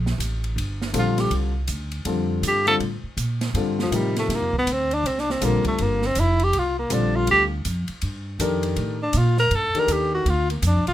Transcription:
Already playing: A#1
0.06 snare
0.18 A1, hi-hat pedal, ride
0.44 ride
0.56 G1, ride
0.82 snare
0.93 A#1 D3 G3 C4 F4 A4, hi-hat pedal, ride
0.99 F4
1.18 G4, snare, ride
1.31 C2, ride
1.68 D2, hi-hat pedal, ride
1.92 ride
2.05 F2 D3 G3 C4 F4 A4, ride
2.42 G2, hi-hat pedal, ride
2.48 G4
2.66 D3 G3 C4 F4 A4, ride
2.80 A2, ride
3.03 muted upright bass stroke
3.17 A#2, hi-hat pedal, ride
3.41 snare, ride
3.54 G2 D3 G3 C4 F4 A4, ride
3.79 F3, snare
3.91 A2 C3 F3 D#4 G4 A#4, hi-hat pedal, ride
3.96 G3
4.16 A3, snare, ride
4.28 G2, snare, ride
4.35 A#3
4.42 F2
4.53 C2, kick
4.58 B3
4.66 D2, hi-hat pedal, ride
4.72 C4
4.91 D4, ride
5.03 C2 C4, ride
5.18 D4, snare
5.30 C4, snare
5.41 A#1 D3 G3 A#3 C4 F4 A4, hi-hat pedal, ride
5.65 A3, muted upright bass stroke, kick, ride
5.78 G1 A#3, ride
6.02 C4, snare
6.15 F1, hi-hat pedal, ride
6.20 E4
6.39 ride
6.44 G4
6.53 C2, ride
6.58 F4
6.79 A#3
6.90 A#1 D3 G3 C4 D4 F4 A4, hi-hat pedal, ride
7.16 F4
7.27 D2 G4, ride
7.65 F2, hi-hat pedal, ride
7.88 muted upright bass stroke, ride
8.01 G2, ride
8.39 F2 D#3 D4 G4 A4 A#4, hi-hat pedal, ride
8.63 ride
8.76 A2, ride
9.03 D4
9.13 A#2, hi-hat pedal, ride
9.18 F4
9.37 A#4, snare
9.51 G2, ride
9.55 A4
9.74 D#3 D4 G4 A4 A#4, muted upright bass stroke, ride
9.79 A#4
9.87 D#2, hi-hat pedal, ride
9.93 G4
10.15 F#4
10.25 D2, ride
10.30 F4
10.50 A#3, ride
10.62 F2, hi-hat pedal, ride
10.67 D4
10.75 C2
10.87 A#1 F4, ride

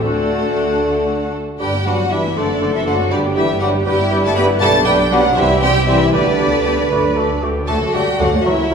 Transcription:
Already playing: A4
0.02 D2 D3 A3 D4 F#4 A4 D5 F#5
1.60 G1 G3 D4 G4 B4 G5 D6
1.73 B3 G4
1.86 F#3 G3 D4 F#4 B4 F#5 D6
1.99 B3 G4
2.11 E3 G3 D4 E4 B4 E5 D6
2.24 B3 G4
2.36 F#1 D3 A3 D4 A4 C5 D5 D6
2.49 C4 F#4
2.61 A3 D4 C5 D6
2.74 E3 C4 E4 F#4 E5
2.86 F#3 A3 D4 F#4 C5 F#5 D6
3.00 C4 F#4
3.11 G1 D3 G3 D4 G4 B4 D5 D6
3.25 B3 G4
3.36 E3 G3 D4 E4 G4 B4 E5 D6
3.50 B3 G4
3.60 F#3 G3 D4 F#4 G4 B4 F#5 D6
3.75 B3 G4
3.85 G1 G3 D4 E4 G4 B4 G5 D6
3.99 B3 G4
4.10 G3 D4 G4 B4 D6
4.25 A3 B3 G4 A4 A5
4.35 G3 B3 D4 G4 B4 B5 D6
4.49 B3 G4
4.60 B1 G3 A3 B3 D4 G4 A4 B4 A5 D6
4.74 G3 B3
4.85 G3 B3 D4 G4 B4 G5 D6
4.99 G3 B3
5.11 F#3 G3 B3 D4 F#4 G4 B4 F#5 D6
5.24 G3 B3
5.36 C2 E3 G3 C4 E4 G4 C5 E5 C6
5.49 G3 E4
5.62 E3 G3 C4 G4 C5 G5 C6
5.76 G3 E4
5.88 E3 G3 C4 E4 G4 C5 E5 C6
6.02 G3 E4
6.13 D2 D3 G3 B3 D4 G4 B4 D5 D6
6.27 G3 D4
6.39 D3 G3 B3 G4 B4 D6
6.54 G3 D4
6.65 D3 G3 B3 G4 B4 D6
6.79 G3 D4
6.91 D2 D3 A3 F#4 B4 D6
7.05 F#3 D4
7.17 D3 A3 F#4 A4 D6
7.31 F#3 D4
7.42 D3 A3 F#4 G4 D6
7.57 F#3 D4
7.67 D2 F#3 A3 F#4 A4 A5 D6
7.82 D2 F#3 A3
7.94 D2 D3 F#3 G3 A3 F#4 G4 A4 G5 D6
8.19 D2 F#3 A3 F#4 A4 F#5 D6
8.32 D2 F#3 A3
8.44 C#2 E3 F#3 E4 F#4 A#4 E5 C#6
8.58 C#2 F#3 A#3
8.70 C#2 F#3 A#3 A#4 C#6

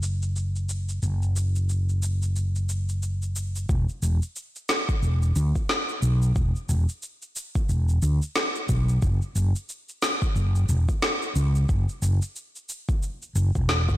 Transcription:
Already playing: F#1
0.03 shaker
0.22 shaker
0.36 shaker
0.56 shaker
0.69 shaker
0.89 shaker
1.03 F#1, shaker
1.22 shaker
1.36 shaker
1.56 shaker
1.69 shaker
1.89 shaker
2.03 shaker
2.22 shaker
2.36 shaker
2.56 shaker
2.69 shaker
2.89 shaker
3.03 shaker
3.22 shaker
3.36 shaker
3.56 shaker
3.69 E1, kick, shaker
3.89 shaker
4.02 E1, shaker
4.22 shaker
4.36 shaker
4.56 shaker
4.69 snare, shaker
4.89 kick, shaker
5.02 E1, shaker
5.22 shaker
5.36 D2, shaker
5.55 kick, shaker
5.69 snare, shaker
5.89 shaker
6.02 B1, shaker
6.22 shaker
6.36 E1, kick, shaker
6.56 shaker
6.69 E1, shaker
6.89 shaker
7.03 shaker
7.22 shaker
7.36 shaker
7.55 kick, shaker
7.69 E1, shaker
7.89 shaker
8.02 D2, shaker
8.22 shaker
8.36 snare, shaker
8.55 shaker
8.69 B1, kick, shaker
8.89 shaker
9.02 F#1, kick, shaker
9.22 shaker
9.35 F#1, shaker
9.56 shaker
9.69 shaker
9.89 shaker
10.02 snare, shaker
10.22 kick, shaker
10.36 F#1, shaker
10.55 shaker
10.69 E1, shaker
10.89 kick, shaker
11.02 snare, shaker
11.22 shaker
11.36 C#2, shaker
11.55 shaker
11.69 F#1, kick, shaker
11.89 shaker
12.02 F#1, shaker
12.22 shaker
12.36 shaker
12.56 shaker
12.69 shaker
12.89 kick, shaker
13.03 shaker
13.22 shaker
13.35 F#1, shaker
13.55 E1, kick, shaker
13.69 snare, shaker
13.89 F#1, kick, shaker

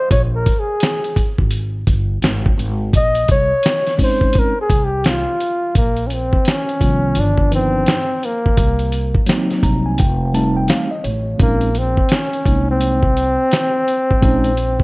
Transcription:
Already playing: C5
0.11 A#1 C#5, kick, closed hi-hat
0.35 A#4
0.46 kick, closed hi-hat
0.59 G#4
0.80 snare, closed hi-hat
1.04 closed hi-hat
1.16 kick, closed hi-hat
1.39 G#1, kick
1.51 closed hi-hat
1.87 G1, kick, closed hi-hat
2.22 G#1, snare, closed hi-hat
2.46 kick
2.57 G#1, closed hi-hat
2.93 A#1 D#5, kick, closed hi-hat
3.15 closed hi-hat
3.28 C2 C#5, kick, closed hi-hat
3.63 snare, closed hi-hat
3.86 snare, closed hi-hat
3.97 G#3 C4 C#4 D#4, kick, open hi-hat
4.03 C5
4.21 kick
4.33 kick, closed hi-hat
4.38 A#4
4.61 G#4
4.70 C2, kick, closed hi-hat
4.85 G4
5.04 F4, snare, closed hi-hat
5.41 closed hi-hat
5.75 A#1 A#3, kick, closed hi-hat
5.97 closed hi-hat
6.07 C#4, closed hi-hat
6.13 C4
6.33 kick
6.45 C#4, snare, closed hi-hat
6.69 closed hi-hat
6.80 C2 D#3 F3 B3 F4, kick, closed hi-hat
7.15 G1, closed hi-hat
7.20 D4
7.38 kick
7.50 F3 D4 D#4 B4, closed hi-hat
7.54 C4
7.86 snare, closed hi-hat
8.23 A#3, closed hi-hat
8.46 kick
8.57 C2, kick, closed hi-hat
8.79 closed hi-hat
8.92 closed hi-hat
9.15 kick
9.27 F#3 A#3 C4 D#4, snare, closed hi-hat
9.51 snare, closed hi-hat
9.63 C2 A#5, kick, closed hi-hat
9.86 G#5
9.98 F1 G5, kick, closed hi-hat
10.33 G3 A3 C4 D#4 A5, closed hi-hat
10.57 G5
10.68 F5, snare, closed hi-hat
10.91 D#5
11.04 A1 C#5, closed hi-hat
11.38 A#1 G#3 C4 C#4 D#4, kick, closed hi-hat
11.42 A#3
11.61 closed hi-hat
11.75 C4, closed hi-hat
11.97 kick
12.09 snare, closed hi-hat
12.14 C#4
12.33 closed hi-hat
12.45 C2 G#3 A#3 C4 D#4, kick, closed hi-hat
12.71 C4
12.81 closed hi-hat
13.03 kick
13.17 closed hi-hat
13.51 snare, closed hi-hat
13.88 closed hi-hat
14.11 kick
14.21 A#1 G#3 C4 C#4 D#4, kick, closed hi-hat
14.44 closed hi-hat
14.57 closed hi-hat
14.80 kick

